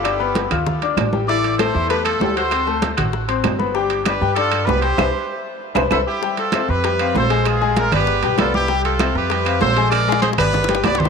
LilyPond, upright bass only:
\new Staff \with { instrumentName = "Upright bass" } { \clef bass \time 4/4 \key c \major \tempo 4 = 194 g,,4. d,4. a,,4~ | a,,4. e,4. d,4~ | d,4. a,,4. g,,4~ | g,,4. g,4. c,4 |
c,8 r2 c,8 c,8 r8 | r4. f,4. bes,,4~ | bes,,4. g,,4 b,,8 c,4~ | c,4. f,4. bes,,4~ |
bes,,4. g,,4. c,4 | }